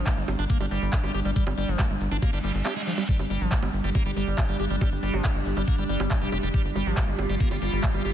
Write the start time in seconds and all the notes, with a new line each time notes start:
Already playing: G3 D4
0.06 A#3, kick, clap, closed hi-hat, cabasa
0.17 G1 G3, closed hi-hat
0.28 G1, open hi-hat, high bongo, cabasa
0.38 G1 D4, closed hi-hat, cabasa
0.49 A#3, kick, closed hi-hat, cabasa
0.60 G1 G3, closed hi-hat, high bongo
0.71 G1 G3, open hi-hat, cabasa
0.82 G1, closed hi-hat, cabasa
0.93 A#3, kick, clap, closed hi-hat, cabasa
1.04 G1 G3, closed hi-hat, high bongo
1.14 G1 G4, open hi-hat, cabasa
1.25 G1 G3, closed hi-hat, cabasa
1.36 G3, kick, closed hi-hat, cabasa
1.47 G1, closed hi-hat, high bongo
1.57 G1 G3, open hi-hat, cabasa
1.68 G1 F3, closed hi-hat, cabasa
1.79 A#3, kick, clap, closed hi-hat, high bongo, cabasa
1.90 G1 G3, closed hi-hat
2.00 G1, open hi-hat, cabasa
2.11 G1 D4, closed hi-hat, cabasa
2.22 A#3, kick, closed hi-hat, high bongo, reverse cymbal, cabasa
2.33 G1 G3, closed hi-hat
2.43 G1 G3, open hi-hat, cabasa
2.55 G1, closed hi-hat, cabasa
2.65 G4, clap, closed hi-hat, high bongo, cabasa
2.76 G#3, closed hi-hat
2.87 F3, open hi-hat, cabasa
2.98 G3, closed hi-hat, high bongo, cabasa
3.08 G3 D4, kick, closed hi-hat, cabasa
3.19 G1, closed hi-hat, high bongo
3.30 G1 G3, open hi-hat, cabasa
3.38 G#1 F3 G4, closed hi-hat
3.42 cabasa
3.52 A#3, kick, clap, closed hi-hat, cabasa
3.63 G1 G3, closed hi-hat, high bongo
3.73 G1, open hi-hat, cabasa
3.84 G1 G3, closed hi-hat, cabasa
3.95 A#3, kick, closed hi-hat, high bongo, cabasa
4.06 G1 G3, closed hi-hat
4.16 G1 G3, open hi-hat, cabasa
4.27 G1, closed hi-hat, cabasa
4.38 A#3, kick, clap, closed hi-hat, high bongo, cabasa
4.49 G1 G3, closed hi-hat
4.59 G1 G4, open hi-hat, cabasa
4.70 G1 G3, closed hi-hat, cabasa
4.81 G3, kick, closed hi-hat, high bongo, cabasa
4.92 G1, closed hi-hat
5.03 G1 G3, open hi-hat, cabasa
5.13 G1 F3, closed hi-hat, high bongo, cabasa
5.24 A#3, kick, clap, closed hi-hat, cabasa
5.35 G1 G3, closed hi-hat
5.45 G1, open hi-hat, cabasa
5.57 G1 G3, closed hi-hat, high bongo, cabasa
5.68 A#3, kick, closed hi-hat, cabasa
5.78 G1 G3, closed hi-hat
5.89 G1 G3, open hi-hat, cabasa
6.00 G1, closed hi-hat, high bongo, cabasa
6.11 A#3, kick, clap, closed hi-hat, cabasa
6.22 F1 G3, closed hi-hat
6.32 F1 G4, open hi-hat, high bongo, cabasa
6.43 F1 G3, closed hi-hat, cabasa
6.54 G3 F4, kick, closed hi-hat, cabasa
6.65 G1, closed hi-hat
6.75 G1 G3, open hi-hat, high bongo, cabasa
6.86 G#1 F3, closed hi-hat, cabasa
6.96 A#3, kick, clap, closed hi-hat, cabasa
7.08 G1 G3, closed hi-hat
7.18 G1, open hi-hat, high bongo, cabasa
7.29 G1 G3, closed hi-hat, cabasa
7.40 A#3, kick, closed hi-hat, cabasa
7.51 G1 G3, closed hi-hat, high bongo
7.61 G1 G3, open hi-hat, cabasa
7.72 G1, closed hi-hat, cabasa
7.83 A#3, kick, clap, closed hi-hat, cabasa
7.94 G1 G3, closed hi-hat, high bongo
8.05 G1 G4, open hi-hat, cabasa